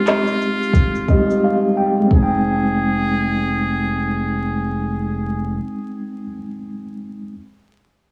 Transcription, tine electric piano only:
0.00 1.02 G#3 medium
0.00 1.04 C4 medium
0.00 1.06 D#4 medium
0.00 1.08 G4 medium
1.07 1.16 G3 soft
1.07 2.06 C4 soft
1.07 2.12 D#4 medium
1.07 1.41 D#5 medium
1.13 1.98 G#3 medium
1.13 2.13 G4 medium
1.44 1.75 F5 medium
1.77 2.09 G5 medium
2.00 6.24 G#3 medium
2.07 6.28 C4 medium
2.15 6.32 D#4 medium
2.23 6.35 G5 medium

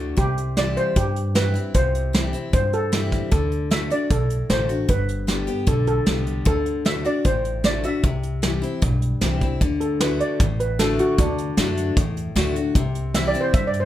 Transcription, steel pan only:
0.18 0.58 G4 medium
0.57 0.77 D5 medium
0.77 0.97 C5 medium
0.97 1.33 G4 medium
1.36 1.76 B4 medium
1.75 2.53 C5 medium
2.54 2.63 C5 medium
2.74 3.10 A4 medium
3.32 3.72 A4 medium
3.71 3.92 E5 medium
3.92 4.10 D5 medium
4.11 4.47 A4 medium
4.50 4.90 C5 medium
4.90 5.64 B4 medium
5.68 5.86 A4 medium
5.88 6.24 A4 medium
6.47 6.83 A4 medium
6.86 7.04 E5 medium
7.06 7.26 D5 medium
7.25 7.66 C5 medium
7.65 7.85 D5 medium
7.85 9.18 E5 medium
9.80 10.00 A4 medium
10.01 10.20 B4 medium
10.20 10.58 D5 medium
10.60 10.79 B4 medium
10.79 10.98 A4 medium
11.00 11.18 F#4 medium
11.19 11.95 D4 medium
13.15 13.28 E5 medium
13.28 13.41 D5 medium
13.41 13.54 C5 medium
13.54 13.67 E5 medium
13.67 13.80 D5 medium
13.80 13.85 C5 medium

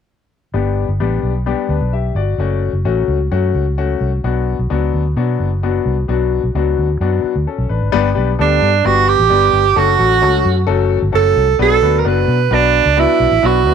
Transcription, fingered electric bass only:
0.54 0.83 G1 loud
0.89 0.98 G1 medium
1.00 1.20 A1 medium
1.23 1.53 B1 medium
1.69 1.79 D2 medium
1.81 2.11 B1 medium
2.15 2.35 G1 medium
2.38 2.68 F#1 loud
2.73 2.83 F#1 medium
2.85 3.05 A1 medium
3.08 3.28 C#2 medium
3.32 3.51 F#2 loud
3.54 3.94 C#2 medium
4.01 4.20 C2 medium
4.24 4.53 B1 medium
4.59 4.69 B1 medium
4.71 4.90 C#2 medium
4.94 5.13 D2 medium
5.17 5.36 B2 loud
5.40 5.79 F#1 medium
5.86 6.05 C2 medium
6.09 6.38 B1 medium
6.43 6.53 B1 medium
6.55 6.74 C#2 medium
6.78 6.97 D2 medium
7.00 7.20 F#2 loud
7.24 muted fingered electric bass stroke soft
7.36 7.45 D2 medium
7.58 7.68 B1 medium
7.70 7.79 A1 medium
7.82 7.91 G#1 medium
7.94 8.13 G1 loud
8.16 8.35 B1 medium
8.39 8.58 D2 medium
8.62 8.81 G2 loud
8.85 9.14 G1 loud
9.19 9.29 A1 loud
9.31 9.50 G1 loud
9.53 9.72 G1 medium
9.77 9.96 F#1 loud
9.99 10.22 A1 medium
10.22 10.41 C#2 medium
10.45 10.64 F#2 medium
10.68 10.97 F#1 loud
11.02 11.12 G1 medium
11.14 11.33 F#1 loud
11.36 11.56 C2 medium
11.59 11.78 B1 loud
11.82 12.01 D2 medium
12.05 12.24 F#1 medium
12.28 12.47 B2 loud
12.51 12.80 B1 loud
12.86 13.05 C#2 loud
13.20 13.29 B1 medium
13.31 13.41 A1 medium
13.43 13.66 B1 loud
13.66 13.74 D2 medium

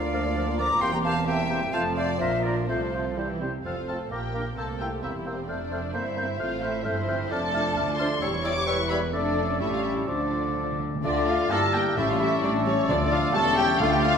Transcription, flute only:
0.00 0.58 F5 medium
0.59 0.83 D6 medium
0.81 0.93 C6 medium
0.94 0.99 A#5 medium
1.04 1.27 A5 medium
1.27 1.75 G5 medium
1.74 1.96 A5 loud
1.97 2.19 F5 medium
2.20 2.44 E5 medium
2.43 2.68 D5 medium
2.69 3.16 C5 medium
3.66 3.72 F6 soft
3.88 3.94 F6 soft
4.11 4.17 D6 soft
4.35 4.41 D6 soft
4.58 4.64 E6 soft
4.81 4.87 E6 soft
5.04 5.10 E6 soft
5.27 5.33 E6 soft
5.49 5.55 F6 soft
5.73 5.79 F6 soft
5.95 6.01 G6 soft
6.18 6.24 G6 soft
6.40 6.46 F6 medium
6.62 6.68 F6 soft
6.85 6.91 F6 medium
7.08 7.14 F6 soft
7.32 7.38 F6 medium
7.55 7.61 F6 medium
7.77 7.83 F6 medium
7.99 8.05 F6 medium
8.22 8.28 E6 medium
8.44 8.50 E6 medium
8.68 8.74 E6 medium
8.90 8.96 E6 medium
9.13 9.57 D6 medium
9.60 10.09 C#6 medium
10.08 10.80 D6 soft
11.05 11.53 D6 medium
11.52 11.99 E6 medium
11.98 12.89 C#6 medium
12.89 13.36 D6 medium
13.35 13.81 C#6 medium
13.80 14.18 D6 medium

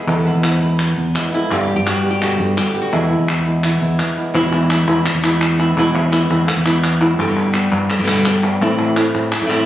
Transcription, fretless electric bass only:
0.07 0.33 E2 medium
0.34 0.93 E2 medium
0.97 1.14 E2 medium
1.51 1.76 G2 medium
1.77 2.36 G2 medium
2.40 2.56 G2 medium
2.93 3.18 E2 medium
3.19 3.78 E2 medium
3.82 3.99 E2 medium
4.35 4.85 E2 loud
4.88 5.05 E2 medium
5.15 5.73 E2 medium
5.77 6.27 E2 loud
6.30 6.47 E2 medium
6.57 7.15 E2 medium
7.19 7.69 G2 loud
7.72 7.89 G2 medium
7.99 8.57 G2 medium
8.61 9.11 A2 loud
9.15 9.31 A2 loud
9.42 9.66 A2 medium

